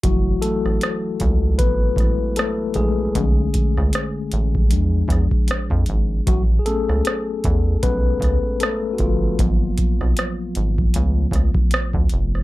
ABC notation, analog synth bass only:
X:1
M:4/4
L:1/16
Q:"Swing 16ths" 1/4=77
K:Alyd
V:1 name="Analog synth bass" clef=bass
F,,,2 z A,,, z2 C,,2 G,,,2 A,,, z3 ^A,,,2 | B,,,2 z C,, z2 A,,,2 E,,2 E,, z2 =F,, G,,,2 | A,,,2 z C,, z2 E,,2 B,,,2 C,, z3 =G,,,2 | G,,,2 z B,,, z2 G,,,2 C,,2 C,, z2 =D,, ^E,,,2 |]